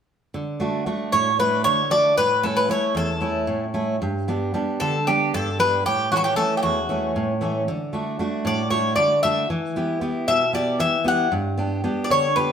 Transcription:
0.34 steel-string acoustic guitar D3
0.60 steel-string acoustic guitar A3 D4 F#4
0.86 steel-string acoustic guitar A3 D4 F#4
1.12 steel-string acoustic guitar A2, bouzouki C#5
1.39 steel-string acoustic guitar A3 D4 F#4, bouzouki B4
1.64 steel-string acoustic guitar D3, bouzouki C#5
1.90 steel-string acoustic guitar A3 D4 F#4, bouzouki D5
2.17 steel-string acoustic guitar A2, bouzouki B4
2.43 steel-string acoustic guitar A3 C#4 E4, bouzouki A4
2.57 bouzouki B4
2.69 steel-string acoustic guitar A3 C#4 E4, bouzouki C#5
2.95 steel-string acoustic guitar E2, bouzouki A4
3.20 steel-string acoustic guitar A3 C#4 E4
3.47 steel-string acoustic guitar A2
3.74 steel-string acoustic guitar A3 C#4 E4
4.02 steel-string acoustic guitar G2
4.28 steel-string acoustic guitar G3 B3 D4
4.54 steel-string acoustic guitar G3 B3 D4
4.80 steel-string acoustic guitar D3, bouzouki A4
5.07 steel-string acoustic guitar G3 B3 D4, bouzouki G4
5.34 steel-string acoustic guitar G2, bouzouki A4
5.59 steel-string acoustic guitar G3 B3 D4, bouzouki B4
5.86 steel-string acoustic guitar A2, bouzouki G4
6.11 steel-string acoustic guitar E3 A3 C#4, bouzouki F#4
6.16 bouzouki E4 F#4
6.24 bouzouki G4
6.36 steel-string acoustic guitar E3 A3 C#4, bouzouki A4
6.57 bouzouki G4
6.63 steel-string acoustic guitar E2, bouzouki F#4
6.89 steel-string acoustic guitar E3 A3 C#4
7.16 steel-string acoustic guitar A2
7.41 steel-string acoustic guitar E3 A3 C#4
7.68 steel-string acoustic guitar D3
7.93 steel-string acoustic guitar A3 D4 F#4
8.19 steel-string acoustic guitar A3 D4 F#4
8.45 steel-string acoustic guitar A2, bouzouki D5
8.70 steel-string acoustic guitar A3 D4 F#4, bouzouki C#5
8.96 steel-string acoustic guitar D3, bouzouki D5
9.23 steel-string acoustic guitar A3 D4 F#4, bouzouki E5
9.50 steel-string acoustic guitar E3
9.76 steel-string acoustic guitar B3 E4 G4
10.01 steel-string acoustic guitar B3 E4 G4
10.28 steel-string acoustic guitar B2, bouzouki E5
10.53 steel-string acoustic guitar B3 E4 G4, bouzouki D5
10.80 steel-string acoustic guitar E3, bouzouki E5
11.04 steel-string acoustic guitar B3 E4 G4, bouzouki F#5
11.32 steel-string acoustic guitar G2
11.57 steel-string acoustic guitar B3 D4 G4
11.84 steel-string acoustic guitar B3 D4 G4
12.04 bouzouki D5
12.10 steel-string acoustic guitar D3, bouzouki C#5
12.36 steel-string acoustic guitar B3 D4 G4, bouzouki B4

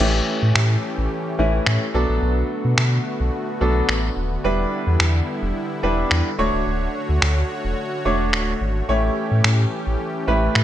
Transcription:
0.00 sub bass A1, grand piano E3 A3 C#4 G4, supersaw synth E3 A3 C#4 G4, crash
0.42 sub bass A2
0.56 sub bass A2, finger snap
0.98 sub bass A1
1.39 sub bass A1, grand piano E3 A3 C#4 E4
1.66 sub bass A2, finger snap
1.94 sub bass B1, supersaw synth D3 A3 B3 F#4, grand piano F#3 B3 D4 A4
2.09 sub bass A#1
2.22 sub bass B1
2.65 sub bass B2
2.78 sub bass B2, finger snap
3.20 sub bass B1
3.61 sub bass B1, grand piano F#3 B3 D4 A4
3.89 sub bass A1, finger snap
4.17 sub bass D#1
4.44 sub bass E1, grand piano G3 D4 E4 B4, supersaw synth G3 E4
4.87 sub bass E2
5.00 sub bass E2, finger snap
5.42 sub bass E1
5.83 sub bass E1, grand piano G3 D4 E4 B4
6.11 sub bass E2, finger snap
6.38 sub bass D1, grand piano A3 D4 F#4 C#5, supersaw synth A3 F#4 C#5
6.54 sub bass C#1
6.67 sub bass D1
7.09 sub bass D2
7.22 sub bass D2, finger snap
7.65 sub bass E1
8.05 sub bass E1, grand piano A3 D4 F#4 C#5
8.33 sub bass D1, finger snap
8.61 sub bass G#1
8.89 sub bass A1, supersaw synth E3 C#4 G4, grand piano A3 E4 G4 C#5
9.31 sub bass A2
9.44 sub bass A2, finger snap
9.87 sub bass A1
10.27 sub bass A1, grand piano A3 E4 G4 B4
10.55 sub bass A2, finger snap

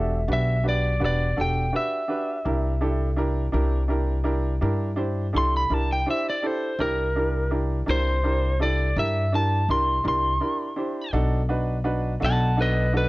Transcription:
Already playing: upright bass E1, grand piano D4 F#4 G4 A4, lead electric guitar E5
0.28 upright bass B1, grand piano D4 F#4 G4 B4
0.33 lead electric guitar E5
0.64 grand piano D4 F#4 G4 B4
0.69 lead electric guitar D5
1.00 upright bass E1, grand piano D4 F#4 G4 B4
1.05 lead electric guitar D5
1.37 upright bass E1, grand piano D4 F#4 G4 A4
1.41 lead electric guitar G5
1.72 grand piano D4 F#4 G4 B4, lead electric guitar E5
2.08 grand piano D4 F#4 G4 B4
2.45 upright bass C2, grand piano D4 E4 G4 A#4
2.80 grand piano D4 E4 G4 A4
3.16 grand piano D4 E4 G4 A#4
3.52 upright bass C2, grand piano D4 E4 G4 A#4
3.88 grand piano D4 E4 G4 A#4
4.24 grand piano D4 E4 G4 A#4
4.61 upright bass G2, grand piano D4 E4 G4 A#4
4.96 grand piano D4 E4 G4 C5
5.33 upright bass C2, grand piano D4 E4 G4 A4
5.38 lead electric guitar C6
5.57 lead electric guitar B5
5.70 upright bass C2, grand piano D4 E4 G4 A#4, lead electric guitar A5
5.92 lead electric guitar G5
6.06 grand piano D4 E4 G4 C5
6.10 lead electric guitar E5
6.30 lead electric guitar D5
6.42 grand piano D4 E4 G4 A4
6.47 lead electric guitar C5
6.79 upright bass C2, grand piano D4 E4 G4 A#4, lead electric guitar A#4
7.15 grand piano D4 E4 G4 A#4
7.50 grand piano D4 E4 G4 A#4
7.86 upright bass C2, grand piano D4 E4 G4 A#4
7.90 lead electric guitar C5
8.23 grand piano D4 E4 G4 A#4
8.60 grand piano D4 E4 G4 A4, lead electric guitar D5
8.96 upright bass G2, grand piano D4 E4 G4 A#4, lead electric guitar E5
9.32 grand piano D4 E4 G4 A#4, lead electric guitar A5
9.68 upright bass C2, grand piano D4 E4 G4 A#4, lead electric guitar C6
10.04 upright bass C2, grand piano D4 E4 G4 A#4
10.08 lead electric guitar C6
10.41 grand piano D4 E4 G4 A#4
10.76 grand piano D4 E4 G4 C5
11.13 upright bass B1, grand piano D4 D#4 F#4 A4
11.49 grand piano D4 D#4 F#4 B4
11.84 grand piano D4 D#4 F#4 B4
12.20 upright bass B1, grand piano D4 D#4 F#4 A4
12.25 lead electric guitar F#5 A5
12.57 grand piano D4 D#4 F#4 A4, lead electric guitar B4
12.62 lead electric guitar D#5
12.93 grand piano D4 D#4 F#4 A4
12.97 lead electric guitar B4

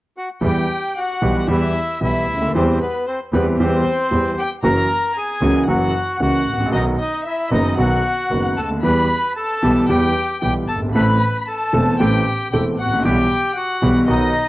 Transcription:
0.17 bandoneon F#4 F#5
0.41 double bass E2, grand piano E2 E3 G3 B3 G4, bandoneon G4, violin G5
0.47 bandoneon G5
0.98 bandoneon F#4 F#5, violin F#5
1.22 double bass B1, grand piano B1 B2 E3 G3 B3 G4
1.48 double bass E2, grand piano E2 E3 G3 B3 G4, bandoneon E4, violin E5
1.53 bandoneon E5
2.01 double bass B1, grand piano B1 B2 E3 G3 B3 G4, bandoneon E4, violin E5
2.05 bandoneon E5
2.27 double bass D2
2.34 grand piano C#2
2.41 grand piano D2
2.48 grand piano D#2
2.54 double bass E2, grand piano E2 E3 G3 C4 G4, bandoneon C4 C5, violin C5
2.81 bandoneon B3 B4, violin B4
3.07 bandoneon C4 C5, violin C5
3.32 double bass E2, grand piano E2 E3 G3 C4 G4, bandoneon B3 B4, violin B4
3.58 double bass E2, grand piano E2 E3 G3 C4 G4, bandoneon C4 C5, violin C5
4.11 double bass E2, grand piano E2 E3 G3 C4 G4
4.38 bandoneon G4 G5, violin G5
4.63 double bass F#1, grand piano F#2 E3 F#3 A#3 C#4 F#4, bandoneon A#4 A#5, violin A#5
5.15 bandoneon G#4 G#5, violin G#5
5.41 double bass C#2, grand piano C#2 C#3 E3 A#3 C#4 F#4
5.66 double bass F#1, grand piano F#2 E3 F#3 A#3 C#4 F#4, bandoneon F#4 F#5, violin F#5
6.19 double bass C#2, grand piano C#2 C#3 E3 A#3 C#4 F#4, bandoneon F#4 F#5, violin F#5
6.46 double bass A1
6.53 grand piano G#1
6.60 grand piano A1
6.66 grand piano A#1
6.72 grand piano B1 B2 D#3 F#3 B3 F#4, double bass B1, bandoneon D#4 D#5, violin D#5
6.98 bandoneon D#4 D#5, violin D#5
7.24 bandoneon E4 E5, violin E5
7.51 double bass F#1, grand piano F#1 F#2 D#3 F#3 B3 F#4, bandoneon D#4 D#5, violin D#5
7.77 double bass B1, grand piano B1 B2 D#3 F#3 B3 F#4, bandoneon F#4 F#5, violin F#5
8.31 double bass F#1, grand piano F#1 F#2 D#3 F#3 B3 F#4
8.57 double bass D2, bandoneon A4 A5, violin A5
8.64 grand piano C#2
8.71 grand piano D2
8.77 grand piano D#2
8.83 double bass E2, grand piano E2 E3 G3 B3 G4, bandoneon B4 B5, violin B5
9.36 bandoneon A4 A5, violin A5
9.63 grand piano B1 B2 E3 G3 B3 G4, double bass B1
9.89 grand piano E2 E3 G3 B3 G4, double bass E2, bandoneon G4 G5, violin G5
10.41 grand piano B1 B2 E3 G3 B3 G4, double bass B1, bandoneon G4 G5, violin G5
10.67 double bass G1, bandoneon A4 A5, violin A5
10.75 grand piano F#1
10.82 grand piano G1
10.89 grand piano G#1
10.94 double bass A1, grand piano A1 A2 E3 A3 C4 A4, bandoneon B4 B5, violin B5
11.40 violin B5, bandoneon B5
11.47 bandoneon A4 A5, violin A5
11.73 grand piano E1 E2 E3 A3 C4 A4, double bass E1
12.00 grand piano A1 A2 E3 A3 C4 A4, double bass A1, bandoneon G4 G5, violin G5
12.52 double bass E1, grand piano E1 E2 E3 A3 C4 A4, bandoneon G4 G5, violin G5
12.78 double bass A1, bandoneon F#4 F#5, violin F#5
12.85 grand piano G#1
12.93 grand piano A1
12.99 grand piano A#1
13.04 double bass B1, grand piano B1 B2 E3 G3 B3 G4, bandoneon G4 G5, violin G5
13.55 bandoneon F#4 F#5, violin F#5
13.82 grand piano B1 B2 E3 G3 B3 G4, double bass B1
14.08 grand piano B1 B2 D#3 F#3 B3 F#4, double bass B1, bandoneon D#4 D#5, violin D#5

